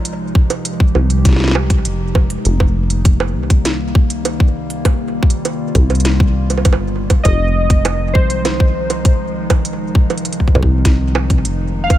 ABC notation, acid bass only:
X:1
M:4/4
L:1/8
Q:1/4=100
K:Fm
V:1 name="Acid bass" clef=bass
C,,3 C,,3 F,,,2 | F,,,3 C,,4- C,,- | C,,3 C,,3 G,,,2 | F,,,3 C,,4- C,,- |
C,,3 C,,3 F,,,2 |]